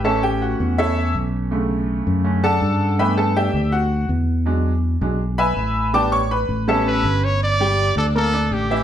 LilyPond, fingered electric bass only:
\new Staff \with { instrumentName = "Fingered electric bass" } { \clef bass \time 4/4 \key g \lydian \tempo 4 = 163 a,,4. e,4. b,,4~ | b,,4. fis,4. g,4~ | g,4. d,4. e,4~ | e,4. b,,4. a,,4~ |
a,,4. a,,4. g,,4~ | g,,4. d,4. a,,4 | }